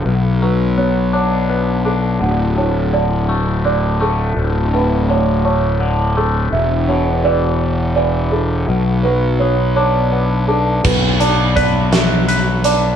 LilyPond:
<<
  \new Staff \with { instrumentName = "Felt piano" } { \time 6/8 \key b \minor \tempo 4. = 56 a'8 b'8 cis''8 cis''4 a'8 | fis''8 cis''8 d''4 d''8 a'8~ | a'8 b'8 cis''8 cis''4 a'8 | e''8 cis''8 d''4 d''8 a'8~ |
a'8 b'8 cis''8 cis''4 a'8 | b'8 d''8 d''8 e''4 d''8 | }
  \new Staff \with { instrumentName = "Clean electric guitar" } { \clef bass \time 6/8 \key b \minor b,8 fis8 b8 d'8 b8 d'8 | d,8 a,8 d8 a8 d8 a8 | d,8 a,8 d8 a8 d8 a8 | e,8 b,8 e4 e4 |
b,8 fis8 b8 d'8 b8 d'8 | b,8 d'8 b'8 fis'8 b'8 d'8 | }
  \new Staff \with { instrumentName = "Fingered electric bass" } { \clef bass \time 6/8 \key b \minor b,,2. | d,,2. | d,,2. | e,,2. |
b,,2. | b,,2. | }
  \new DrumStaff \with { instrumentName = "Drums" } \drummode { \time 6/8 r4. r4. | r4. r4. | r4. r4. | r4. r4. |
r4. r4. | <cymc bd>8 hh8 <hh bd>8 <hh sn>8 hh8 hh8 | }
>>